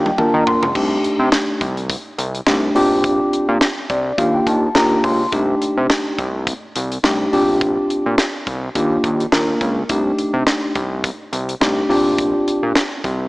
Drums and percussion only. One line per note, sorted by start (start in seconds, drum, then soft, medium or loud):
0.06 high tom medium
0.18 mid tom medium
0.47 floor tom loud
0.63 floor tom loud
0.75 kick loud
0.75 crash loud
1.04 closed hi-hat medium
1.32 snare loud
1.32 clap medium
1.32 closed hi-hat medium
1.61 kick medium
1.61 closed hi-hat medium
1.77 closed hi-hat soft
1.90 kick loud
1.90 closed hi-hat loud
2.19 closed hi-hat medium
2.35 closed hi-hat medium
2.47 snare loud
2.47 clap loud
2.47 closed hi-hat medium
2.76 open hi-hat medium
3.04 kick loud
3.04 closed hi-hat loud
3.33 closed hi-hat medium
3.61 snare loud
3.61 clap medium
3.61 closed hi-hat medium
3.90 kick medium
3.90 closed hi-hat medium
4.18 kick loud
4.18 closed hi-hat loud
4.47 kick loud
4.47 closed hi-hat medium
4.75 snare loud
4.75 clap medium
4.75 closed hi-hat medium
5.04 kick medium
5.04 open hi-hat medium
5.32 kick loud
5.32 closed hi-hat loud
5.62 closed hi-hat medium
5.90 snare loud
5.90 clap medium
5.90 closed hi-hat medium
6.19 kick medium
6.19 closed hi-hat medium
6.47 kick loud
6.47 closed hi-hat loud
6.76 closed hi-hat medium
6.92 closed hi-hat medium
7.04 snare loud
7.04 clap medium
7.04 closed hi-hat medium
7.33 open hi-hat medium
7.61 kick loud
7.61 closed hi-hat loud
7.90 closed hi-hat medium
8.18 snare loud
8.18 clap medium
8.18 closed hi-hat medium
8.47 kick medium
8.47 closed hi-hat medium
8.75 kick loud
8.75 closed hi-hat loud
9.04 kick loud
9.04 closed hi-hat medium
9.20 closed hi-hat medium
9.32 snare loud
9.32 clap medium
9.32 closed hi-hat medium
9.61 kick medium
9.61 closed hi-hat medium
9.89 kick loud
9.89 closed hi-hat loud
10.19 closed hi-hat medium
10.47 snare loud
10.47 clap medium
10.47 closed hi-hat medium
10.75 kick medium
10.75 closed hi-hat medium
11.04 kick loud
11.04 closed hi-hat loud
11.33 closed hi-hat medium
11.49 closed hi-hat medium
11.62 snare loud
11.62 clap loud
11.62 closed hi-hat medium
11.90 open hi-hat medium
12.18 kick loud
12.18 closed hi-hat loud
12.48 closed hi-hat medium
12.76 snare loud
12.76 clap medium
12.76 closed hi-hat medium
13.04 kick medium
13.04 closed hi-hat medium